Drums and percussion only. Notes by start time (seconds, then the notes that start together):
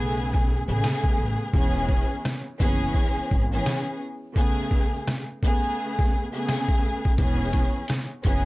0.34 kick
0.84 cross-stick, snare
1.04 kick
1.53 kick
1.89 kick
2.25 cross-stick, snare
2.60 kick
2.94 kick
3.31 kick
3.66 cross-stick, snare
4.36 kick
4.71 kick
5.07 cross-stick, snare
5.43 kick
5.99 kick, snare
6.49 cross-stick, snare
6.69 kick
7.05 kick
7.18 kick, closed hi-hat
7.53 kick, closed hi-hat
7.88 cross-stick, snare, closed hi-hat
8.24 kick, closed hi-hat